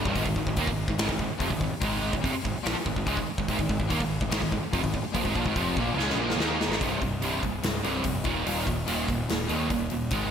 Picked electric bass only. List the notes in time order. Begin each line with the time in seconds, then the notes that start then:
0.05 C1
0.15 G#1
0.25 G#1
0.36 G#1
0.47 G#1
0.57 D#2
0.67 G#1
0.88 G#1
1.01 G#1
1.09 G#1
1.19 G#1
1.30 muted picked electric bass stroke
1.40 F1
1.51 G#1
1.61 G#1
1.73 muted picked electric bass stroke
1.82 G#1
2.13 G#1
2.25 F1
2.34 muted picked electric bass stroke
2.45 G#1
2.57 muted picked electric bass stroke
2.66 A#1
2.78 muted picked electric bass stroke
2.86 G#1
2.96 G#1
3.07 C#2
3.17 G#1
3.27 muted picked electric bass stroke
3.38 G#1
3.48 G#1
3.59 G#1
3.69 G#1
3.79 G#1
3.91 D#2
4.01 G#1
4.21 G#1
4.30 G#1
4.42 G#1
4.52 G#1
4.61 muted picked electric bass stroke
4.73 F1
4.84 G#1
4.94 G#1
5.02 muted picked electric bass stroke
5.15 A#1
5.25 G#1
5.36 A#1
5.46 G#1
5.55 F1
5.77 A#1
5.94 C#2
6.15 A#1
6.36 D#2
6.68 G#1
6.81 C1
7.02 C1
7.21 C1
7.44 C1
7.63 C1
7.85 C1
8.05 F1
8.25 D#1
8.47 D#1
8.67 D#1
8.89 D#1
9.09 D#1
9.31 D#1
9.50 D#2
9.70 D#1
9.92 D#1
10.12 G#1